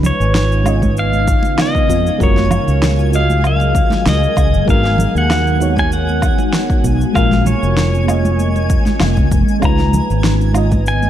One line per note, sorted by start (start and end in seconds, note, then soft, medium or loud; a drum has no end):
0.00 2.18 C#3 medium
0.00 0.61 G#3 medium
0.00 2.18 B3 medium
0.00 0.62 C#4 medium
0.00 0.62 D#4 medium
0.00 2.18 D#4 medium
0.00 0.63 F4 medium
0.00 0.64 B4 loud
0.00 4.64 F5 medium
0.00 11.10 G#5 medium
0.00 11.10 G#6 medium
0.00 low conga medium
0.04 1.01 C#5 medium
0.04 cabasa medium
0.20 1.33 G#1 medium
0.20 cabasa soft
0.35 snare loud
0.35 cabasa soft
0.52 cabasa soft
0.64 2.16 G#3 medium
0.64 2.16 C#4 medium
0.64 2.17 D#4 medium
0.64 2.18 F4 medium
0.64 muted conga soft
0.64 cabasa medium
0.64 low woodblock medium
0.68 2.18 D#5 medium
0.82 kick medium
0.82 high conga medium
0.82 cabasa soft
0.97 1.62 F5 loud
0.97 cabasa soft
1.13 high conga medium
1.13 cabasa soft
1.28 kick loud
1.28 cabasa medium
1.43 muted conga medium
1.43 cabasa soft
1.58 2.24 D#5 medium
1.58 snare loud
1.58 cabasa soft
1.58 low woodblock medium
1.75 kick loud
1.75 cabasa soft
1.89 2.08 F2 loud
1.89 muted conga medium
1.89 cabasa medium
2.07 cabasa soft
2.18 2.57 F#1 loud
2.18 4.65 F#3 medium
2.18 3.08 G#3 medium
2.18 3.09 C#4 medium
2.18 3.10 F4 medium
2.18 3.10 F#4 medium
2.18 4.65 G#4 medium
2.18 4.65 A#4 medium
2.18 kick loud
2.18 cabasa soft
2.23 3.11 A#4 loud
2.23 3.17 C#5 medium
2.36 snare soft
2.36 high conga medium
2.36 cabasa soft
2.51 low conga medium
2.51 cabasa medium
2.51 low woodblock medium
2.67 3.81 C#2 medium
2.67 cabasa soft
2.83 snare loud
2.83 cabasa soft
2.99 cabasa soft
3.11 4.63 G#3 medium
3.11 4.64 C#4 medium
3.11 4.64 F4 medium
3.11 4.65 F#4 medium
3.11 muted conga soft
3.11 cabasa medium
3.15 4.65 D#5 medium
3.15 3.46 F5 medium
3.30 high conga medium
3.30 cabasa soft
3.44 4.08 F5 loud
3.44 cabasa soft
3.44 low woodblock medium
3.60 muted conga medium
3.60 cabasa soft
3.75 kick loud
3.75 muted conga soft
3.75 cabasa medium
3.90 snare soft
3.90 high conga loud
3.90 cabasa soft
4.06 4.25 C#2 loud
4.06 4.70 D#5 medium
4.06 snare loud
4.06 cabasa soft
4.21 high conga medium
4.21 cabasa soft
4.36 4.54 C#2 medium
4.36 kick loud
4.36 muted conga soft
4.36 cabasa medium
4.36 low woodblock medium
4.53 4.62 F#1 medium
4.53 cabasa soft
4.65 5.05 G#1 loud
4.65 5.56 G#3 medium
4.65 7.13 G#3 medium
4.65 5.57 B3 medium
4.65 7.13 B3 medium
4.65 7.12 D#4 medium
4.65 5.57 D#4 medium
4.65 7.13 F#4 medium
4.65 5.58 F#4 medium
4.65 kick loud
4.65 cabasa soft
4.70 5.58 A#4 loud
4.70 5.17 F5 loud
4.83 snare soft
4.83 high conga medium
4.83 cabasa soft
4.98 low conga medium
4.98 cabasa medium
5.15 6.28 D#2 medium
5.15 5.74 F#5 loud
5.15 cabasa soft
5.30 snare loud
5.30 cabasa soft
5.30 low woodblock medium
5.47 cabasa soft
5.58 7.10 G#3 medium
5.58 7.11 B3 medium
5.58 7.11 D#4 medium
5.58 7.12 F#4 medium
5.58 muted conga soft
5.58 cabasa medium
5.62 7.13 C#5 medium
5.76 5.93 G#5 loud
5.76 kick medium
5.76 high conga medium
5.76 cabasa soft
5.92 6.85 F#5 loud
5.92 cabasa soft
6.07 high conga medium
6.07 cabasa soft
6.22 kick loud
6.22 cabasa medium
6.22 low woodblock medium
6.38 muted conga medium
6.38 cabasa soft
6.53 snare loud
6.53 cabasa soft
6.70 kick loud
6.70 cabasa soft
6.84 7.03 B1 loud
6.84 muted conga soft
6.84 cabasa medium
7.01 cabasa soft
7.13 7.52 A#1 loud
7.13 8.03 G#3 medium
7.13 9.60 G#3 medium
7.13 8.04 A#3 medium
7.13 9.60 A#3 medium
7.13 9.60 C#4 medium
7.13 8.04 C#4 medium
7.13 8.05 F4 medium
7.13 7.47 F5 loud
7.13 kick loud
7.13 cabasa soft
7.13 low woodblock medium
7.17 8.05 A#4 medium
7.32 snare soft
7.32 high conga medium
7.32 cabasa soft
7.46 9.28 C#5 medium
7.46 low conga medium
7.46 cabasa medium
7.62 8.76 F1 medium
7.62 cabasa soft
7.77 snare medium
7.77 cabasa soft
7.95 cabasa soft
8.05 9.57 G#3 medium
8.05 9.58 A#3 medium
8.05 9.59 C#4 medium
8.05 9.59 F4 medium
8.05 muted conga soft
8.05 low woodblock medium
8.09 9.60 D#5 medium
8.09 cabasa medium
8.25 high conga medium
8.25 cabasa soft
8.39 cabasa soft
8.56 muted conga medium
8.56 cabasa soft
8.70 kick loud
8.70 muted conga soft
8.70 cabasa medium
8.86 snare soft
8.86 high conga medium
8.86 cabasa soft
9.00 9.19 F1 medium
9.00 snare loud
9.00 cabasa soft
9.00 low woodblock medium
9.17 9.26 C#2 medium
9.17 kick medium
9.17 high conga medium
9.17 cabasa soft
9.31 9.41 F1 loud
9.31 kick loud
9.31 muted conga soft
9.31 cabasa medium
9.48 cabasa soft
9.60 9.99 C#2 loud
9.60 11.10 C#3 medium
9.60 10.50 G#3 medium
9.60 11.10 B3 medium
9.60 10.51 C#4 medium
9.60 10.52 D#4 medium
9.60 11.10 D#4 medium
9.60 10.52 F4 medium
9.60 11.10 D#5 medium
9.60 kick loud
9.60 cabasa soft
9.60 low woodblock medium
9.64 10.53 B4 loud
9.64 10.88 A#5 loud
9.79 snare soft
9.79 high conga medium
9.79 cabasa soft
9.94 low conga medium
9.94 cabasa medium
10.10 11.10 G#1 medium
10.10 cabasa soft
10.24 snare loud
10.24 cabasa soft
10.41 cabasa soft
10.53 11.10 G#3 medium
10.53 11.10 C#4 medium
10.53 11.10 D#4 medium
10.53 11.10 F4 medium
10.53 muted conga soft
10.53 cabasa medium
10.53 low woodblock medium
10.57 11.10 D#5 medium
10.72 kick medium
10.72 high conga medium
10.72 cabasa soft
10.86 11.10 G#5 loud
10.86 cabasa soft
11.02 high conga medium
11.02 cabasa soft